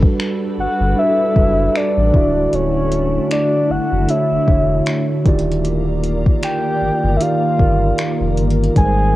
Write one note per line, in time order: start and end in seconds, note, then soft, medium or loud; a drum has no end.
0.00 0.43 G3 medium
0.00 2.11 G3 medium
0.00 0.43 D4 medium
0.00 2.11 D4 medium
0.00 0.44 F#4 medium
0.00 5.22 F#4 medium
0.00 0.44 A4 medium
0.00 2.11 A4 medium
0.00 0.45 B4 medium
0.00 2.11 B4 medium
0.00 kick loud
0.20 finger snap loud
0.58 0.67 G1 soft
0.58 1.00 F#5 loud
0.80 0.94 G1 medium
0.96 1.24 G3 medium
0.96 1.24 D4 medium
0.96 1.24 F#4 medium
0.96 1.25 A4 medium
0.96 1.25 B4 medium
0.96 1.78 E5 loud
1.35 1.69 F#1 medium
1.35 2.11 G3 medium
1.35 2.11 D4 medium
1.35 2.12 F#4 medium
1.35 2.12 A4 medium
1.35 2.12 B4 medium
1.35 kick medium
1.76 2.56 D5 loud
1.76 finger snap loud
1.97 2.11 A1 medium
2.12 2.47 D1 loud
2.12 3.39 D3 medium
2.12 5.23 D3 medium
2.12 5.23 A3 medium
2.12 3.40 D4 medium
2.12 5.23 D4 medium
2.12 5.22 E4 medium
2.12 3.40 E4 medium
2.12 3.40 F#4 medium
2.12 3.41 E5 medium
2.12 kick loud
2.53 3.19 D1 loud
2.53 3.32 C#5 loud
2.53 closed hi-hat medium
2.92 closed hi-hat medium
3.31 3.73 D5 medium
3.31 finger snap loud
3.31 closed hi-hat medium
3.70 3.79 F#1 soft
3.70 4.11 F#5 loud
3.92 4.06 F#1 medium
4.08 4.35 D3 medium
4.08 4.36 D4 medium
4.08 4.36 E4 medium
4.08 4.37 F#4 medium
4.08 4.37 C#5 medium
4.08 5.26 E5 medium
4.08 closed hi-hat medium
4.32 4.38 E1 soft
4.47 4.81 E1 medium
4.47 5.22 D3 medium
4.47 5.23 D4 medium
4.47 5.23 E4 medium
4.47 5.24 F#4 medium
4.47 5.24 C#5 medium
4.47 kick medium
4.86 finger snap loud
4.86 closed hi-hat medium
5.25 6.24 D#1 loud
5.25 6.51 D#3 medium
5.25 8.73 D#3 medium
5.25 8.73 A#3 medium
5.25 6.51 D#4 medium
5.25 8.73 F4 medium
5.25 6.52 F4 medium
5.25 6.52 G4 medium
5.25 9.16 A#4 medium
5.25 8.73 D5 medium
5.25 6.53 D5 loud
5.25 kick loud
5.25 closed hi-hat medium
5.39 closed hi-hat soft
5.52 closed hi-hat soft
5.65 closed hi-hat medium
6.04 closed hi-hat medium
6.26 kick loud
6.43 7.18 G5 loud
6.43 finger snap loud
6.43 closed hi-hat medium
6.81 6.90 G1 soft
7.04 7.18 G1 medium
7.17 7.47 D#3 medium
7.17 7.47 D#4 medium
7.17 7.23 E5 medium
7.17 closed hi-hat medium
7.21 7.48 F4 medium
7.21 7.48 G4 medium
7.21 7.49 D5 medium
7.21 8.38 F5 loud
7.58 7.92 G1 medium
7.58 8.34 D#3 medium
7.58 8.34 D#4 medium
7.58 8.35 F4 medium
7.58 8.35 G4 medium
7.58 8.36 A#4 medium
7.58 kick medium
7.98 finger snap loud
7.98 closed hi-hat medium
8.21 8.39 F1 medium
8.37 8.70 G1 medium
8.37 closed hi-hat medium
8.50 closed hi-hat soft
8.64 closed hi-hat soft
8.75 9.16 G#1 loud
8.75 9.16 G3 medium
8.75 9.16 G#3 medium
8.75 9.16 A#3 medium
8.75 9.16 C4 medium
8.75 9.16 D#4 medium
8.75 9.16 A#4 medium
8.75 8.85 B4 medium
8.75 9.16 G#5 loud
8.75 kick loud
8.75 closed hi-hat medium
8.85 9.16 C5 medium